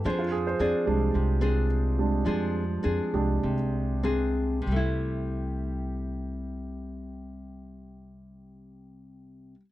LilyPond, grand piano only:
<<
  \new Staff \with { instrumentName = "Grand piano" } { \time 4/4 \key c \major \tempo 4 = 94 c''16 f'16 aes'16 c''16 d''4. r4. | r1 | r1 | r1 | }
  \new Staff \with { instrumentName = "Grand piano" } { \clef bass \time 4/4 \key c \major r4. <g aes d'>4. r8 <g aes d'>8 | r4. <aes d' g'>8 r2 | r1 | r1 | }
>>